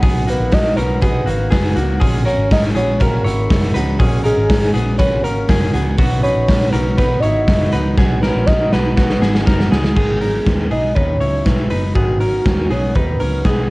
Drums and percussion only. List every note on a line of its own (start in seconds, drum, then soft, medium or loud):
0.02 kick loud
0.02 hi-hat pedal medium
0.02 open hi-hat medium
0.27 hi-hat pedal medium
0.27 open hi-hat medium
0.52 kick loud
0.52 snare loud
0.52 hi-hat pedal medium
0.52 open hi-hat medium
0.77 hi-hat pedal medium
0.77 open hi-hat medium
1.02 kick loud
1.02 hi-hat pedal medium
1.02 open hi-hat medium
1.27 hi-hat pedal medium
1.27 open hi-hat medium
1.52 kick loud
1.52 snare loud
1.52 hi-hat pedal medium
1.52 open hi-hat medium
1.76 hi-hat pedal medium
1.76 open hi-hat medium
2.01 kick loud
2.01 hi-hat pedal medium
2.01 open hi-hat medium
2.26 hi-hat pedal medium
2.26 open hi-hat medium
2.51 kick loud
2.51 snare loud
2.51 hi-hat pedal medium
2.51 open hi-hat medium
2.76 hi-hat pedal medium
2.76 open hi-hat medium
3.00 kick loud
3.00 hi-hat pedal medium
3.00 open hi-hat medium
3.26 hi-hat pedal medium
3.26 open hi-hat medium
3.50 kick loud
3.50 snare loud
3.50 hi-hat pedal medium
3.50 open hi-hat medium
3.75 hi-hat pedal medium
3.75 open hi-hat medium
4.00 kick loud
4.00 hi-hat pedal medium
4.00 open hi-hat medium
4.25 hi-hat pedal medium
4.25 open hi-hat medium
4.50 kick loud
4.50 snare loud
4.50 hi-hat pedal medium
4.50 open hi-hat medium
4.75 hi-hat pedal medium
4.75 open hi-hat medium
4.99 kick loud
4.99 hi-hat pedal medium
4.99 open hi-hat medium
5.24 hi-hat pedal medium
5.24 open hi-hat medium
5.49 kick loud
5.49 snare loud
5.49 hi-hat pedal medium
5.49 open hi-hat medium
5.73 hi-hat pedal medium
5.73 open hi-hat medium
5.99 kick loud
5.99 hi-hat pedal medium
5.99 open hi-hat medium
6.24 hi-hat pedal medium
6.24 open hi-hat medium
6.48 kick loud
6.48 snare loud
6.48 hi-hat pedal medium
6.48 open hi-hat medium
6.73 hi-hat pedal medium
6.73 open hi-hat medium
6.98 kick loud
6.98 hi-hat pedal medium
6.98 open hi-hat medium
7.23 hi-hat pedal medium
7.23 open hi-hat medium
7.48 kick loud
7.48 snare loud
7.48 hi-hat pedal medium
7.48 open hi-hat medium
7.72 hi-hat pedal medium
7.72 open hi-hat medium
7.98 kick loud
7.98 snare medium
8.23 snare medium
8.48 kick loud
8.48 snare medium
8.73 snare medium
8.98 kick loud
8.98 snare medium
9.10 snare medium
9.22 snare medium
9.35 snare medium
9.47 kick loud
9.47 snare loud
9.60 snare medium
9.72 snare loud
9.84 snare loud
9.97 kick loud
9.97 crash medium
10.21 open hi-hat medium
10.46 kick loud
10.46 snare medium
10.46 closed hi-hat medium
10.71 open hi-hat medium
10.96 kick loud
10.96 closed hi-hat medium
11.21 open hi-hat medium
11.46 kick loud
11.46 snare loud
11.46 closed hi-hat medium
11.70 open hi-hat medium
11.95 kick loud
11.95 closed hi-hat medium
12.21 open hi-hat medium
12.46 kick loud
12.46 snare loud
12.46 closed hi-hat medium
12.70 open hi-hat medium
12.95 kick loud
12.95 closed hi-hat medium
13.20 open hi-hat medium
13.45 kick loud
13.45 snare loud
13.45 closed hi-hat medium